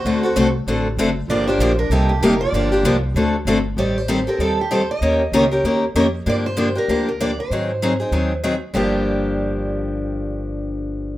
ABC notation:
X:1
M:4/4
L:1/8
Q:"Swing" 1/4=193
K:Gm
V:1 name="Steel-string acoustic guitar"
c3 z4 z | d c2 B A G B d- | d3 z4 z | d c2 B A G c e- |
e3 z4 z | d c2 B2 B d c- | c6 z2 | G8- |
G8 |]
V:2 name="Accordion"
^F3 z4 z | F F2 D C B, E F- | F3 z4 z | z8 |
z8 | z8 | z8 | z8 |
z8 |]
V:3 name="Steel-string acoustic guitar"
[D,A,C^FA] [CFA] [D,A,CFA] z [D,A,CFA] z [D,A,CFA] z | [D,F,B,DG] [B,DG] [D,F,B,DG] z [C,G,B,EG] z [C,G,B,EG] z | [D,F,B,DG] [B,DG] [D,F,B,DG] z [D,A,C^FA] z [D,A,CFA] z | [E,G,CGA] z [E,G,CGA] [CGA] [E,G,CGA] z [E,G,CGA] z |
[E,B,_DGB] z [E,B,DGB] [DGB] [E,B,DGB] z [E,B,DGB] z | [D,F,B,DG] z [D,F,B,DG] [B,DG] [D,F,B,DG] z [D,F,B,DG] z | [E,_G,CE_A] z [E,G,CEA] [CEA] [E,G,CEA] z [E,G,CEA] z | [G,,D,F,B,DG]8- |
[G,,D,F,B,DG]8 |]
V:4 name="Upright bass" clef=bass
D,,2 C,,2 A,,,2 ^F,,,2 | G,,,2 B,,,2 C,,2 F,,,2 | G,,,2 C,,2 D,,2 G,,,2 | A,,,4 E,,4 |
E,,2 _D,,2 E,,2 F,,2 | G,,4 D,,4 | _A,,4 E,,4 | G,,,8- |
G,,,8 |]